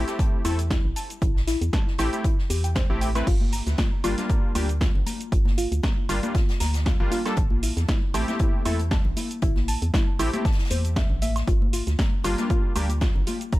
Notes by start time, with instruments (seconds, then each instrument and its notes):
0.07 synth keys A3 C4 E4 G4, snare, closed hi-hat, shaker
0.19 synth arpeggio sound A5, kick, closed hi-hat, shaker
0.44 fm bass E2, synth keys A3 C4 E4 A4, synth arpeggio sound E4, closed hi-hat, open hi-hat, high woodblock, shaker
0.59 closed hi-hat, shaker
0.70 synth arpeggio sound E4, kick, snare, closed hi-hat, shaker
0.85 fm bass A1
0.96 synth arpeggio sound A5, closed hi-hat, open hi-hat, shaker
1.10 closed hi-hat, shaker
1.21 fm bass A1, synth arpeggio sound E4, kick, closed hi-hat, shaker
1.36 snare
1.47 synth arpeggio sound E4, snare, closed hi-hat, open hi-hat, shaker
1.61 fm bass E2, closed hi-hat, shaker
1.73 synth arpeggio sound A5, kick, snare, closed hi-hat, shaker
1.87 snare
1.98 fm bass A1, synth keys A3 C4 E4 G4, synth arpeggio sound E4, snare, closed hi-hat, open hi-hat, high woodblock, shaker
2.13 synth keys A3 C4 E4 G4, closed hi-hat, shaker
2.24 synth arpeggio sound E4, kick, closed hi-hat, shaker
2.38 snare
2.50 fm bass E2, synth arpeggio sound G4, closed hi-hat, open hi-hat, shaker
2.64 synth arpeggio sound G5, closed hi-hat, shaker
2.75 synth arpeggio sound C5, kick, snare, closed hi-hat, shaker
2.90 fm bass A1, synth keys A3 C4 E4 G4
3.01 synth arpeggio sound G5, closed hi-hat, open hi-hat, shaker
3.15 synth keys A3 C4 E4 B4, snare, closed hi-hat, high woodblock, shaker
3.27 fm bass G1, synth arpeggio sound F4, kick, closed hi-hat, crash, shaker
3.41 high conga
3.52 synth arpeggio sound A#5, closed hi-hat, open hi-hat, shaker
3.67 fm bass D2, snare, closed hi-hat, shaker
3.78 synth arpeggio sound F4, kick, snare, closed hi-hat, high conga, shaker
4.04 fm bass G1, synth keys G3 A#3 D4 F4, synth arpeggio sound F4, closed hi-hat, open hi-hat, high bongo, high woodblock, shaker
4.18 synth keys G3 A#3 D4 F4, snare, closed hi-hat, high conga, low conga, shaker
4.30 synth arpeggio sound A#5, kick, closed hi-hat, shaker
4.55 fm bass D2, synth keys G3 A#3 D4 G4, synth arpeggio sound F4, closed hi-hat, open hi-hat, high conga, high woodblock, shaker
4.69 closed hi-hat, shaker
4.81 synth arpeggio sound F4, kick, snare, closed hi-hat, shaker
4.95 fm bass G1, low conga
5.06 synth arpeggio sound A#5, closed hi-hat, open hi-hat, high conga, shaker
5.21 closed hi-hat, shaker
5.32 fm bass G1, synth arpeggio sound F4, kick, closed hi-hat, shaker
5.45 snare, high bongo, high conga
5.57 synth arpeggio sound F4, closed hi-hat, open hi-hat, shaker
5.72 fm bass D2, closed hi-hat, shaker
5.83 synth arpeggio sound A#5, kick, snare, closed hi-hat, high conga, shaker
6.09 fm bass G1, synth keys G3 A#3 D4 F4, synth arpeggio sound F4, closed hi-hat, open hi-hat, high bongo, high woodblock, shaker
6.23 synth keys G3 A#3 D4 F4, closed hi-hat, high conga, low conga, shaker
6.35 synth arpeggio sound F4, kick, snare, closed hi-hat, shaker
6.49 snare, closed hi-hat
6.60 fm bass D2, synth arpeggio sound A#5, snare, closed hi-hat, open hi-hat, high conga, shaker
6.73 snare, closed hi-hat, shaker
6.85 synth arpeggio sound F4, kick, snare, closed hi-hat, shaker
7.00 fm bass G1, synth keys G3 A#3 D4 F4, low conga
7.11 synth arpeggio sound F4, closed hi-hat, open hi-hat, high conga, shaker
7.26 synth keys G3 A#3 D4 A4, snare, closed hi-hat, high woodblock, shaker
7.36 fm bass A1, synth arpeggio sound A5, kick, closed hi-hat, shaker
7.50 high conga
7.63 synth arpeggio sound E4, closed hi-hat, open hi-hat, shaker
7.76 fm bass E2, snare, closed hi-hat, shaker
7.88 synth arpeggio sound E4, kick, snare, closed hi-hat, high conga, shaker
8.14 fm bass A1, synth keys A3 C4 E4 G4, synth arpeggio sound A5, closed hi-hat, open hi-hat, high bongo, high woodblock, shaker
8.28 synth keys A3 C4 E4 G4, snare, closed hi-hat, high conga, low conga, shaker
8.39 synth arpeggio sound E4, kick, closed hi-hat, shaker
8.65 fm bass E2, synth keys A3 C4 E4 A4, synth arpeggio sound E4, closed hi-hat, open hi-hat, high conga, high woodblock, shaker
8.80 closed hi-hat, shaker
8.91 synth arpeggio sound A5, kick, snare, closed hi-hat, shaker
9.05 fm bass A1, low conga
9.16 synth arpeggio sound E4, closed hi-hat, open hi-hat, high conga, shaker
9.31 closed hi-hat, shaker
9.42 fm bass A1, synth arpeggio sound E4, kick, closed hi-hat, shaker
9.56 snare, high bongo, high conga
9.68 synth arpeggio sound A5, closed hi-hat, open hi-hat, shaker
9.82 fm bass E2, closed hi-hat, shaker
9.94 synth arpeggio sound E4, kick, snare, closed hi-hat, high conga, shaker
10.19 fm bass A1, synth keys A3 C4 E4 G4, synth arpeggio sound E4, closed hi-hat, open hi-hat, high bongo, high woodblock, shaker
10.33 synth keys A3 C4 E4 G4, closed hi-hat, high conga, low conga, shaker
10.45 synth arpeggio sound A5, kick, snare, closed hi-hat, shaker
10.52 snare, closed hi-hat
10.59 snare, closed hi-hat
10.65 snare, closed hi-hat
10.70 fm bass E2, synth arpeggio sound C5, closed hi-hat, open hi-hat, high conga, shaker
10.85 closed hi-hat, shaker
10.96 synth arpeggio sound E5, kick, snare, closed hi-hat, shaker
11.10 fm bass A1, low conga
11.22 synth arpeggio sound E5, closed hi-hat, open hi-hat, high conga, shaker
11.36 snare, closed hi-hat, high woodblock, shaker
11.48 fm bass G1, synth arpeggio sound F4, kick, closed hi-hat, shaker
11.62 high conga
11.73 synth arpeggio sound F4, closed hi-hat, open hi-hat, shaker
11.87 fm bass D2, snare, closed hi-hat, shaker
11.99 synth arpeggio sound A#5, kick, snare, closed hi-hat, high conga, shaker
12.24 fm bass G1, synth keys G3 A#3 D4 F4, synth arpeggio sound F4, closed hi-hat, open hi-hat, high bongo, high woodblock, shaker
12.38 synth keys G3 A#3 D4 F4, snare, closed hi-hat, high conga, low conga, shaker
12.50 synth arpeggio sound F4, kick, closed hi-hat, shaker
12.76 fm bass D2, synth keys G3 A#3 D4 G4, synth arpeggio sound A#5, closed hi-hat, open hi-hat, high conga, high woodblock, shaker
12.89 closed hi-hat, shaker
13.01 synth arpeggio sound F4, kick, snare, closed hi-hat, shaker
13.15 fm bass G1, low conga
13.27 synth arpeggio sound F4, closed hi-hat, open hi-hat, high conga, shaker
13.41 closed hi-hat, shaker
13.52 fm bass G1, synth arpeggio sound A#5, kick, closed hi-hat, shaker